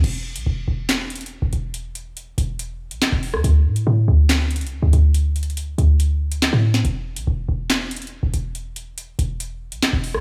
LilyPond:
<<
  \new Staff \with { instrumentName = "808-style bass" } { \clef bass \time 4/4 \key d \mixolydian \tempo 4 = 141 e,,8. b,,16 e,,8 e,,4.~ e,,16 e,,16 e,,8~ | e,,4. e,,4~ e,,16 b,,16 e,,16 e,,8 e,16 | d,8 a,8 a,8 d,4~ d,16 c,16 d,16 d,16 d,8~ | d,4. d,4.~ d,16 a,8. |
e,,8. b,,16 e,,8 e,,4.~ e,,16 e,,16 e,,8~ | e,,4. e,,4~ e,,16 b,,16 e,,16 e,,8 e,16 | }
  \new DrumStaff \with { instrumentName = "Drums" } \drummode { \time 4/4 cymc8. hh16 r4 <hc hh sn>8 hh32 hh32 hh32 hh32 r8 hh8 | hh8 hh8 hh8 hh8 hh8. hh16 <hc sn>8 hho16 ss16 | hh8. hh16 r4 <hc hh sn>8 hh32 hh32 hh32 hh32 r8 hh8 | \tuplet 3/2 { hh16 r16 r16 hh16 hh16 hh16 } hh8 hh8 hh8. hh16 <hc sn>8. sn16 |
hh8. hh16 r4 <hc hh sn>8 hh32 hh32 hh32 hh32 r8 hh8 | hh8 hh8 hh8 hh8 hh8. hh16 <hc sn>8 hho16 ss16 | }
>>